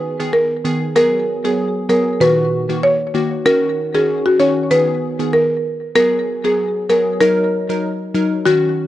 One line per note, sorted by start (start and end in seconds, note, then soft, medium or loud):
0.00 0.15 D#3 loud
0.00 0.15 B3 medium
0.00 0.16 G#4 loud
0.00 0.17 B4 medium
0.20 0.38 D#3 medium
0.20 0.38 B3 medium
0.20 0.38 G#4 medium
0.33 0.79 A#4 medium
0.64 0.85 D#3 medium
0.64 0.86 B3 medium
0.64 0.86 G#4 medium
0.95 1.40 F#3 medium
0.95 1.40 B3 medium
0.95 1.41 G#4 loud
0.95 1.21 A#4 loud
1.44 1.86 F#3 medium
1.44 1.86 B3 medium
1.44 1.56 G#4 medium
1.44 1.86 G#4 medium
1.89 2.18 F#3 medium
1.89 2.19 B3 medium
1.89 2.19 G#4 medium
1.89 2.04 A#4 medium
2.20 2.65 A#2 medium
2.20 2.65 D#3 medium
2.20 2.65 F#4 loud
2.20 2.67 B4 loud
2.69 2.87 D#3 medium
2.69 2.88 A#3 medium
2.69 2.88 F#4 medium
2.83 3.29 C#5 medium
3.14 3.35 D#3 medium
3.14 3.36 A#3 medium
3.14 3.36 F#4 medium
3.45 3.90 D#3 medium
3.45 3.90 C#4 medium
3.45 3.90 F#4 loud
3.45 3.71 A#4 loud
3.94 4.36 D#3 medium
3.94 4.36 C#4 medium
3.94 4.36 F#4 medium
3.94 4.06 G#4 medium
4.26 4.37 F#4 medium
4.39 4.68 D#3 medium
4.39 4.69 C#4 medium
4.39 4.69 F#4 medium
4.39 4.54 C#5 medium
4.70 5.15 D#3 medium
4.70 5.15 B3 medium
4.70 5.16 G#4 loud
4.70 5.17 B4 medium
5.19 5.38 D#3 medium
5.19 5.38 B3 medium
5.19 5.38 G#4 medium
5.33 5.79 A#4 medium
5.95 6.40 F#3 medium
5.95 6.40 B3 medium
5.95 6.40 G#4 loud
5.95 6.21 A#4 loud
6.44 6.86 F#3 medium
6.44 6.86 B3 medium
6.44 6.86 G#4 medium
6.44 6.56 G#4 medium
6.89 7.18 F#3 medium
6.89 7.19 B3 medium
6.89 7.19 G#4 medium
6.89 7.04 A#4 medium
7.21 7.65 F#3 medium
7.21 7.65 D#4 medium
7.21 7.67 A#4 loud
7.21 7.66 A#4 loud
7.69 7.88 F#3 medium
7.69 7.88 D#4 medium
7.69 7.88 A#4 medium
8.14 8.35 F#3 medium
8.14 8.36 D#4 medium
8.14 8.36 A#4 medium
8.46 8.87 D#3 medium
8.46 8.87 C#4 medium
8.46 8.60 F#4 medium
8.46 8.87 F#4 loud